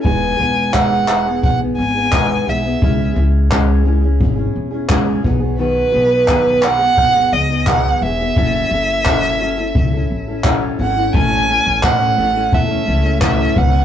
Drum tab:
CP |--xx--x-|--x---x-|--xx--x-|--x---x-|
BD |o-o-o-o-|o-o-o-oo|--o-o-o-|o-o-o-o-|

CP |--x---x-|
BD |o-o-o-oo|